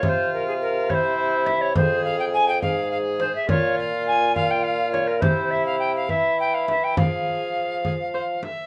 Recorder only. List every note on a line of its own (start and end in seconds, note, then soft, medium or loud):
0.04 0.10 C#5 medium
0.09 0.33 C5 medium
0.34 0.47 A#4 medium
0.47 0.53 G#4 medium
0.61 0.91 A#4 medium
0.90 0.95 C#5 medium
0.94 1.48 C5 medium
1.46 1.63 E5 medium
1.61 1.75 C#5 medium
1.76 2.04 C5 medium
2.04 2.19 F5 medium
2.19 2.25 G5 medium
2.33 2.47 G#5 loud
2.48 2.61 G5 medium
2.62 2.90 F5 medium
2.91 2.98 F5 medium
3.20 3.34 C5 medium
3.35 3.49 E5 medium
3.49 3.77 C#5 medium
3.79 4.07 F5 medium
4.07 4.34 G#5 loud
4.35 4.52 F5 loud
4.51 4.65 G5 medium
4.63 4.91 F5 medium
4.92 5.09 C#5 medium
5.07 5.23 A#4 medium
5.21 5.52 C5 medium
5.51 5.65 E5 medium
5.66 5.78 F5 medium
5.79 5.94 G5 medium
5.96 6.11 F5 medium
6.10 6.39 E5 medium
6.40 6.56 G5 medium
6.54 6.69 F5 medium
6.69 6.85 E5 medium
6.84 6.97 G5 medium
6.98 8.41 F5 medium